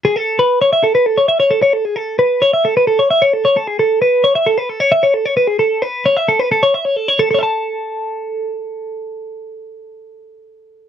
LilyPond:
\new Staff \with { instrumentName = "Clean electric guitar" } { \time 4/4 \key a \major \tempo 4 = 132 gis'16 a'8 b'8 cis''16 e''16 a'16 b'16 a'16 cis''16 e''16 cis''16 a'16 cis''16 a'16 | gis'16 a'8 b'8 cis''16 e''16 a'16 b'16 a'16 cis''16 e''16 cis''16 a'16 cis''16 a'16 | gis'16 a'8 b'8 cis''16 e''16 a'16 b'16 a'16 cis''16 e''16 cis''16 a'16 cis''16 b'16 | gis'16 a'8 b'8 cis''16 e''16 a'16 b'16 a'16 cis''16 e''16 cis''16 a'16 cis''16 a'16 |
<a' cis'' e'' a''>1~ | <a' cis'' e'' a''>1 | }